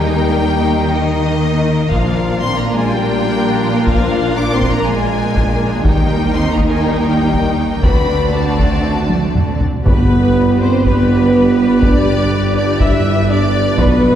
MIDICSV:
0, 0, Header, 1, 11, 480
1, 0, Start_track
1, 0, Tempo, 491400
1, 1869, Time_signature, 4, 2, 24, 8
1, 6196, Tempo, 500835
1, 10036, Tempo, 491400
1, 13751, End_track
2, 0, Start_track
2, 0, Title_t, "Violin section"
2, 0, Program_c, 0, 48
2, 0, Note_on_c, 0, 79, 81
2, 911, Note_off_c, 0, 79, 0
2, 914, Note_on_c, 0, 75, 82
2, 1868, Note_off_c, 0, 75, 0
2, 1871, Note_on_c, 0, 77, 73
2, 2348, Note_off_c, 0, 77, 0
2, 2358, Note_on_c, 0, 84, 91
2, 2509, Note_off_c, 0, 84, 0
2, 2520, Note_on_c, 0, 82, 69
2, 2672, Note_off_c, 0, 82, 0
2, 2682, Note_on_c, 0, 80, 73
2, 2833, Note_off_c, 0, 80, 0
2, 2840, Note_on_c, 0, 79, 76
2, 3793, Note_off_c, 0, 79, 0
2, 3801, Note_on_c, 0, 77, 74
2, 4266, Note_off_c, 0, 77, 0
2, 4274, Note_on_c, 0, 86, 77
2, 4431, Note_off_c, 0, 86, 0
2, 4439, Note_on_c, 0, 84, 69
2, 4594, Note_off_c, 0, 84, 0
2, 4602, Note_on_c, 0, 82, 75
2, 4748, Note_on_c, 0, 80, 75
2, 4756, Note_off_c, 0, 82, 0
2, 5712, Note_off_c, 0, 80, 0
2, 5720, Note_on_c, 0, 79, 76
2, 6189, Note_off_c, 0, 79, 0
2, 6199, Note_on_c, 0, 84, 70
2, 6355, Note_off_c, 0, 84, 0
2, 6365, Note_on_c, 0, 82, 57
2, 6518, Note_off_c, 0, 82, 0
2, 6522, Note_on_c, 0, 80, 61
2, 6662, Note_on_c, 0, 79, 67
2, 6672, Note_off_c, 0, 80, 0
2, 7620, Note_on_c, 0, 83, 67
2, 7621, Note_off_c, 0, 79, 0
2, 8107, Note_on_c, 0, 81, 55
2, 8108, Note_off_c, 0, 83, 0
2, 9319, Note_off_c, 0, 81, 0
2, 9561, Note_on_c, 0, 74, 50
2, 13359, Note_off_c, 0, 74, 0
2, 13392, Note_on_c, 0, 75, 59
2, 13751, Note_off_c, 0, 75, 0
2, 13751, End_track
3, 0, Start_track
3, 0, Title_t, "Trumpet section"
3, 0, Program_c, 1, 61
3, 9559, Note_on_c, 1, 71, 54
3, 10239, Note_off_c, 1, 71, 0
3, 10278, Note_on_c, 1, 72, 52
3, 10518, Note_on_c, 1, 71, 54
3, 10520, Note_off_c, 1, 72, 0
3, 11474, Note_on_c, 1, 74, 63
3, 11478, Note_off_c, 1, 71, 0
3, 12180, Note_off_c, 1, 74, 0
3, 12195, Note_on_c, 1, 74, 55
3, 12429, Note_on_c, 1, 76, 56
3, 12432, Note_off_c, 1, 74, 0
3, 12905, Note_off_c, 1, 76, 0
3, 12917, Note_on_c, 1, 74, 65
3, 13393, Note_on_c, 1, 71, 61
3, 13397, Note_off_c, 1, 74, 0
3, 13751, Note_off_c, 1, 71, 0
3, 13751, End_track
4, 0, Start_track
4, 0, Title_t, "Violin section"
4, 0, Program_c, 2, 48
4, 0, Note_on_c, 2, 63, 54
4, 0, Note_on_c, 2, 70, 58
4, 1837, Note_off_c, 2, 70, 0
4, 1838, Note_off_c, 2, 63, 0
4, 1869, Note_on_c, 2, 65, 61
4, 1870, Note_on_c, 2, 70, 66
4, 5674, Note_off_c, 2, 65, 0
4, 5674, Note_off_c, 2, 70, 0
4, 5720, Note_on_c, 2, 63, 57
4, 5723, Note_on_c, 2, 70, 56
4, 7590, Note_off_c, 2, 63, 0
4, 7592, Note_off_c, 2, 70, 0
4, 7625, Note_on_c, 2, 74, 47
4, 7628, Note_on_c, 2, 66, 47
4, 9329, Note_off_c, 2, 74, 0
4, 9330, Note_off_c, 2, 66, 0
4, 9571, Note_on_c, 2, 71, 61
4, 10245, Note_off_c, 2, 71, 0
4, 10281, Note_on_c, 2, 72, 53
4, 10522, Note_off_c, 2, 72, 0
4, 10529, Note_on_c, 2, 71, 60
4, 11465, Note_off_c, 2, 71, 0
4, 11488, Note_on_c, 2, 74, 71
4, 12188, Note_off_c, 2, 74, 0
4, 12200, Note_on_c, 2, 74, 59
4, 12434, Note_off_c, 2, 74, 0
4, 12435, Note_on_c, 2, 76, 63
4, 12917, Note_off_c, 2, 76, 0
4, 12919, Note_on_c, 2, 74, 68
4, 13388, Note_off_c, 2, 74, 0
4, 13406, Note_on_c, 2, 71, 69
4, 13751, Note_off_c, 2, 71, 0
4, 13751, End_track
5, 0, Start_track
5, 0, Title_t, "Viola section"
5, 0, Program_c, 3, 48
5, 0, Note_on_c, 3, 58, 60
5, 0, Note_on_c, 3, 63, 57
5, 1827, Note_off_c, 3, 58, 0
5, 1827, Note_off_c, 3, 63, 0
5, 1868, Note_on_c, 3, 58, 64
5, 1868, Note_on_c, 3, 62, 64
5, 5673, Note_off_c, 3, 58, 0
5, 5673, Note_off_c, 3, 62, 0
5, 5710, Note_on_c, 3, 58, 59
5, 5710, Note_on_c, 3, 63, 62
5, 7585, Note_off_c, 3, 58, 0
5, 7585, Note_off_c, 3, 63, 0
5, 7620, Note_on_c, 3, 62, 53
5, 7623, Note_on_c, 3, 60, 50
5, 9326, Note_off_c, 3, 62, 0
5, 9327, Note_off_c, 3, 60, 0
5, 9557, Note_on_c, 3, 71, 56
5, 9558, Note_on_c, 3, 67, 54
5, 13357, Note_off_c, 3, 71, 0
5, 13358, Note_off_c, 3, 67, 0
5, 13385, Note_on_c, 3, 66, 64
5, 13386, Note_on_c, 3, 71, 61
5, 13751, Note_off_c, 3, 66, 0
5, 13751, Note_off_c, 3, 71, 0
5, 13751, End_track
6, 0, Start_track
6, 0, Title_t, "French horn section"
6, 0, Program_c, 4, 60
6, 0, Note_on_c, 4, 55, 70
6, 903, Note_on_c, 4, 51, 64
6, 914, Note_off_c, 4, 55, 0
6, 1863, Note_off_c, 4, 51, 0
6, 1869, Note_on_c, 4, 53, 68
6, 2338, Note_off_c, 4, 53, 0
6, 2351, Note_on_c, 4, 60, 66
6, 2508, Note_off_c, 4, 60, 0
6, 2517, Note_on_c, 4, 58, 59
6, 2671, Note_off_c, 4, 58, 0
6, 2675, Note_on_c, 4, 56, 69
6, 2819, Note_on_c, 4, 55, 70
6, 2830, Note_off_c, 4, 56, 0
6, 3621, Note_off_c, 4, 55, 0
6, 3787, Note_on_c, 4, 53, 64
6, 4259, Note_off_c, 4, 53, 0
6, 4275, Note_on_c, 4, 62, 68
6, 4432, Note_off_c, 4, 62, 0
6, 4434, Note_on_c, 4, 60, 60
6, 4587, Note_on_c, 4, 58, 67
6, 4592, Note_off_c, 4, 60, 0
6, 4743, Note_on_c, 4, 56, 65
6, 4745, Note_off_c, 4, 58, 0
6, 5690, Note_off_c, 4, 56, 0
6, 5713, Note_on_c, 4, 55, 59
6, 6195, Note_off_c, 4, 55, 0
6, 6206, Note_on_c, 4, 60, 63
6, 6352, Note_on_c, 4, 58, 49
6, 6359, Note_off_c, 4, 60, 0
6, 6508, Note_off_c, 4, 58, 0
6, 6523, Note_on_c, 4, 56, 54
6, 6672, Note_on_c, 4, 55, 53
6, 6675, Note_off_c, 4, 56, 0
6, 7626, Note_off_c, 4, 55, 0
6, 7630, Note_on_c, 4, 71, 60
6, 8103, Note_off_c, 4, 71, 0
6, 8108, Note_on_c, 4, 57, 43
6, 9319, Note_off_c, 4, 57, 0
6, 9568, Note_on_c, 4, 59, 72
6, 10244, Note_off_c, 4, 59, 0
6, 10283, Note_on_c, 4, 60, 64
6, 10523, Note_off_c, 4, 60, 0
6, 10533, Note_on_c, 4, 59, 68
6, 11467, Note_off_c, 4, 59, 0
6, 11492, Note_on_c, 4, 62, 73
6, 12186, Note_off_c, 4, 62, 0
6, 12198, Note_on_c, 4, 62, 71
6, 12434, Note_off_c, 4, 62, 0
6, 12445, Note_on_c, 4, 64, 73
6, 12917, Note_on_c, 4, 62, 71
6, 12922, Note_off_c, 4, 64, 0
6, 13396, Note_on_c, 4, 59, 76
6, 13397, Note_off_c, 4, 62, 0
6, 13751, Note_off_c, 4, 59, 0
6, 13751, End_track
7, 0, Start_track
7, 0, Title_t, "Cello section"
7, 0, Program_c, 5, 48
7, 0, Note_on_c, 5, 51, 55
7, 1830, Note_off_c, 5, 51, 0
7, 1865, Note_on_c, 5, 46, 57
7, 5672, Note_off_c, 5, 46, 0
7, 5713, Note_on_c, 5, 51, 52
7, 7625, Note_off_c, 5, 51, 0
7, 7628, Note_on_c, 5, 50, 46
7, 9333, Note_off_c, 5, 50, 0
7, 9564, Note_on_c, 5, 43, 51
7, 13361, Note_off_c, 5, 43, 0
7, 13390, Note_on_c, 5, 47, 59
7, 13751, Note_off_c, 5, 47, 0
7, 13751, End_track
8, 0, Start_track
8, 0, Title_t, "Timpani"
8, 0, Program_c, 6, 47
8, 9564, Note_on_c, 6, 43, 67
8, 10242, Note_off_c, 6, 43, 0
8, 13751, End_track
9, 0, Start_track
9, 0, Title_t, "Double bass section"
9, 0, Program_c, 7, 48
9, 0, Note_on_c, 7, 39, 55
9, 1830, Note_off_c, 7, 39, 0
9, 1866, Note_on_c, 7, 34, 59
9, 5672, Note_off_c, 7, 34, 0
9, 5711, Note_on_c, 7, 39, 57
9, 7624, Note_off_c, 7, 39, 0
9, 7624, Note_on_c, 7, 38, 45
9, 9332, Note_off_c, 7, 38, 0
9, 9564, Note_on_c, 7, 31, 53
9, 13361, Note_off_c, 7, 31, 0
9, 13398, Note_on_c, 7, 35, 57
9, 13751, Note_off_c, 7, 35, 0
9, 13751, End_track
10, 0, Start_track
10, 0, Title_t, "Tuba"
10, 0, Program_c, 8, 58
10, 9560, Note_on_c, 8, 31, 51
10, 13359, Note_off_c, 8, 31, 0
10, 13393, Note_on_c, 8, 35, 62
10, 13751, Note_off_c, 8, 35, 0
10, 13751, End_track
11, 0, Start_track
11, 0, Title_t, "Taiko and cinematic ensemble drums"
11, 1870, Note_on_c, 9, 41, 61
11, 1968, Note_off_c, 9, 41, 0
11, 3784, Note_on_c, 9, 41, 77
11, 3882, Note_off_c, 9, 41, 0
11, 4510, Note_on_c, 9, 41, 69
11, 4608, Note_off_c, 9, 41, 0
11, 5233, Note_on_c, 9, 41, 72
11, 5330, Note_off_c, 9, 41, 0
11, 5711, Note_on_c, 9, 41, 89
11, 5809, Note_off_c, 9, 41, 0
11, 6427, Note_on_c, 9, 41, 65
11, 6523, Note_off_c, 9, 41, 0
11, 7144, Note_on_c, 9, 41, 71
11, 7240, Note_off_c, 9, 41, 0
11, 7622, Note_on_c, 9, 41, 81
11, 7717, Note_off_c, 9, 41, 0
11, 8350, Note_on_c, 9, 41, 66
11, 8446, Note_off_c, 9, 41, 0
11, 8836, Note_on_c, 9, 48, 67
11, 8932, Note_off_c, 9, 48, 0
11, 9079, Note_on_c, 9, 45, 73
11, 9175, Note_off_c, 9, 45, 0
11, 9324, Note_on_c, 9, 43, 70
11, 9420, Note_off_c, 9, 43, 0
11, 9563, Note_on_c, 9, 41, 88
11, 9659, Note_off_c, 9, 41, 0
11, 10522, Note_on_c, 9, 41, 67
11, 10620, Note_off_c, 9, 41, 0
11, 11478, Note_on_c, 9, 41, 81
11, 11576, Note_off_c, 9, 41, 0
11, 12433, Note_on_c, 9, 41, 75
11, 12531, Note_off_c, 9, 41, 0
11, 13392, Note_on_c, 9, 41, 92
11, 13490, Note_off_c, 9, 41, 0
11, 13751, End_track
0, 0, End_of_file